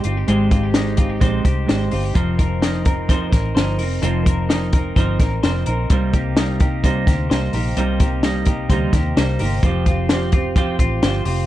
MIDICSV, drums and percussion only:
0, 0, Header, 1, 2, 480
1, 0, Start_track
1, 0, Tempo, 467290
1, 289, Time_signature, 4, 2, 24, 8
1, 11774, End_track
2, 0, Start_track
2, 0, Title_t, "Drums"
2, 38, Note_on_c, 9, 42, 67
2, 141, Note_off_c, 9, 42, 0
2, 287, Note_on_c, 9, 42, 81
2, 390, Note_off_c, 9, 42, 0
2, 526, Note_on_c, 9, 42, 71
2, 527, Note_on_c, 9, 36, 83
2, 629, Note_off_c, 9, 42, 0
2, 630, Note_off_c, 9, 36, 0
2, 760, Note_on_c, 9, 38, 98
2, 765, Note_on_c, 9, 42, 81
2, 863, Note_off_c, 9, 38, 0
2, 867, Note_off_c, 9, 42, 0
2, 999, Note_on_c, 9, 42, 79
2, 1008, Note_on_c, 9, 36, 85
2, 1101, Note_off_c, 9, 42, 0
2, 1111, Note_off_c, 9, 36, 0
2, 1246, Note_on_c, 9, 36, 78
2, 1247, Note_on_c, 9, 42, 72
2, 1349, Note_off_c, 9, 36, 0
2, 1349, Note_off_c, 9, 42, 0
2, 1488, Note_on_c, 9, 36, 78
2, 1491, Note_on_c, 9, 42, 60
2, 1591, Note_off_c, 9, 36, 0
2, 1594, Note_off_c, 9, 42, 0
2, 1737, Note_on_c, 9, 42, 63
2, 1739, Note_on_c, 9, 38, 99
2, 1840, Note_off_c, 9, 42, 0
2, 1841, Note_off_c, 9, 38, 0
2, 1966, Note_on_c, 9, 46, 68
2, 2069, Note_off_c, 9, 46, 0
2, 2210, Note_on_c, 9, 42, 77
2, 2213, Note_on_c, 9, 36, 104
2, 2313, Note_off_c, 9, 42, 0
2, 2316, Note_off_c, 9, 36, 0
2, 2455, Note_on_c, 9, 36, 86
2, 2455, Note_on_c, 9, 42, 70
2, 2558, Note_off_c, 9, 36, 0
2, 2558, Note_off_c, 9, 42, 0
2, 2695, Note_on_c, 9, 38, 99
2, 2700, Note_on_c, 9, 42, 80
2, 2798, Note_off_c, 9, 38, 0
2, 2802, Note_off_c, 9, 42, 0
2, 2931, Note_on_c, 9, 42, 76
2, 2936, Note_on_c, 9, 36, 89
2, 3034, Note_off_c, 9, 42, 0
2, 3039, Note_off_c, 9, 36, 0
2, 3175, Note_on_c, 9, 36, 82
2, 3180, Note_on_c, 9, 42, 73
2, 3277, Note_off_c, 9, 36, 0
2, 3283, Note_off_c, 9, 42, 0
2, 3415, Note_on_c, 9, 36, 83
2, 3417, Note_on_c, 9, 38, 36
2, 3418, Note_on_c, 9, 42, 63
2, 3518, Note_off_c, 9, 36, 0
2, 3520, Note_off_c, 9, 38, 0
2, 3521, Note_off_c, 9, 42, 0
2, 3664, Note_on_c, 9, 42, 61
2, 3666, Note_on_c, 9, 38, 91
2, 3767, Note_off_c, 9, 42, 0
2, 3768, Note_off_c, 9, 38, 0
2, 3890, Note_on_c, 9, 46, 69
2, 3992, Note_off_c, 9, 46, 0
2, 4136, Note_on_c, 9, 42, 81
2, 4238, Note_off_c, 9, 42, 0
2, 4378, Note_on_c, 9, 36, 88
2, 4382, Note_on_c, 9, 42, 68
2, 4481, Note_off_c, 9, 36, 0
2, 4485, Note_off_c, 9, 42, 0
2, 4621, Note_on_c, 9, 38, 98
2, 4626, Note_on_c, 9, 42, 83
2, 4724, Note_off_c, 9, 38, 0
2, 4728, Note_off_c, 9, 42, 0
2, 4855, Note_on_c, 9, 42, 76
2, 4860, Note_on_c, 9, 36, 87
2, 4958, Note_off_c, 9, 42, 0
2, 4963, Note_off_c, 9, 36, 0
2, 5097, Note_on_c, 9, 36, 78
2, 5105, Note_on_c, 9, 42, 73
2, 5200, Note_off_c, 9, 36, 0
2, 5207, Note_off_c, 9, 42, 0
2, 5337, Note_on_c, 9, 36, 80
2, 5337, Note_on_c, 9, 38, 33
2, 5337, Note_on_c, 9, 42, 62
2, 5439, Note_off_c, 9, 38, 0
2, 5440, Note_off_c, 9, 36, 0
2, 5440, Note_off_c, 9, 42, 0
2, 5582, Note_on_c, 9, 42, 67
2, 5583, Note_on_c, 9, 38, 96
2, 5684, Note_off_c, 9, 42, 0
2, 5686, Note_off_c, 9, 38, 0
2, 5814, Note_on_c, 9, 42, 69
2, 5917, Note_off_c, 9, 42, 0
2, 6059, Note_on_c, 9, 42, 83
2, 6062, Note_on_c, 9, 36, 108
2, 6162, Note_off_c, 9, 42, 0
2, 6165, Note_off_c, 9, 36, 0
2, 6301, Note_on_c, 9, 42, 70
2, 6302, Note_on_c, 9, 36, 84
2, 6404, Note_off_c, 9, 42, 0
2, 6405, Note_off_c, 9, 36, 0
2, 6539, Note_on_c, 9, 38, 103
2, 6543, Note_on_c, 9, 42, 84
2, 6641, Note_off_c, 9, 38, 0
2, 6646, Note_off_c, 9, 42, 0
2, 6778, Note_on_c, 9, 42, 72
2, 6785, Note_on_c, 9, 36, 89
2, 6881, Note_off_c, 9, 42, 0
2, 6888, Note_off_c, 9, 36, 0
2, 7023, Note_on_c, 9, 36, 79
2, 7027, Note_on_c, 9, 42, 72
2, 7126, Note_off_c, 9, 36, 0
2, 7130, Note_off_c, 9, 42, 0
2, 7263, Note_on_c, 9, 36, 83
2, 7268, Note_on_c, 9, 38, 32
2, 7269, Note_on_c, 9, 42, 62
2, 7366, Note_off_c, 9, 36, 0
2, 7371, Note_off_c, 9, 38, 0
2, 7372, Note_off_c, 9, 42, 0
2, 7510, Note_on_c, 9, 42, 64
2, 7511, Note_on_c, 9, 38, 93
2, 7613, Note_off_c, 9, 42, 0
2, 7614, Note_off_c, 9, 38, 0
2, 7736, Note_on_c, 9, 46, 68
2, 7838, Note_off_c, 9, 46, 0
2, 7979, Note_on_c, 9, 42, 81
2, 8081, Note_off_c, 9, 42, 0
2, 8216, Note_on_c, 9, 42, 76
2, 8219, Note_on_c, 9, 36, 88
2, 8319, Note_off_c, 9, 42, 0
2, 8322, Note_off_c, 9, 36, 0
2, 8454, Note_on_c, 9, 38, 98
2, 8459, Note_on_c, 9, 42, 82
2, 8557, Note_off_c, 9, 38, 0
2, 8561, Note_off_c, 9, 42, 0
2, 8684, Note_on_c, 9, 42, 78
2, 8696, Note_on_c, 9, 36, 84
2, 8787, Note_off_c, 9, 42, 0
2, 8799, Note_off_c, 9, 36, 0
2, 8932, Note_on_c, 9, 36, 79
2, 8935, Note_on_c, 9, 42, 74
2, 9035, Note_off_c, 9, 36, 0
2, 9038, Note_off_c, 9, 42, 0
2, 9172, Note_on_c, 9, 36, 84
2, 9173, Note_on_c, 9, 38, 34
2, 9174, Note_on_c, 9, 42, 63
2, 9275, Note_off_c, 9, 36, 0
2, 9276, Note_off_c, 9, 38, 0
2, 9277, Note_off_c, 9, 42, 0
2, 9420, Note_on_c, 9, 42, 63
2, 9421, Note_on_c, 9, 38, 94
2, 9522, Note_off_c, 9, 42, 0
2, 9524, Note_off_c, 9, 38, 0
2, 9647, Note_on_c, 9, 46, 69
2, 9749, Note_off_c, 9, 46, 0
2, 9891, Note_on_c, 9, 36, 104
2, 9891, Note_on_c, 9, 42, 83
2, 9994, Note_off_c, 9, 36, 0
2, 9994, Note_off_c, 9, 42, 0
2, 10130, Note_on_c, 9, 36, 84
2, 10130, Note_on_c, 9, 42, 73
2, 10233, Note_off_c, 9, 36, 0
2, 10233, Note_off_c, 9, 42, 0
2, 10367, Note_on_c, 9, 38, 102
2, 10372, Note_on_c, 9, 42, 81
2, 10470, Note_off_c, 9, 38, 0
2, 10475, Note_off_c, 9, 42, 0
2, 10601, Note_on_c, 9, 42, 76
2, 10608, Note_on_c, 9, 36, 87
2, 10704, Note_off_c, 9, 42, 0
2, 10711, Note_off_c, 9, 36, 0
2, 10846, Note_on_c, 9, 36, 83
2, 10850, Note_on_c, 9, 42, 75
2, 10948, Note_off_c, 9, 36, 0
2, 10953, Note_off_c, 9, 42, 0
2, 11085, Note_on_c, 9, 36, 86
2, 11090, Note_on_c, 9, 42, 62
2, 11188, Note_off_c, 9, 36, 0
2, 11193, Note_off_c, 9, 42, 0
2, 11327, Note_on_c, 9, 42, 66
2, 11328, Note_on_c, 9, 38, 96
2, 11429, Note_off_c, 9, 42, 0
2, 11431, Note_off_c, 9, 38, 0
2, 11561, Note_on_c, 9, 46, 69
2, 11663, Note_off_c, 9, 46, 0
2, 11774, End_track
0, 0, End_of_file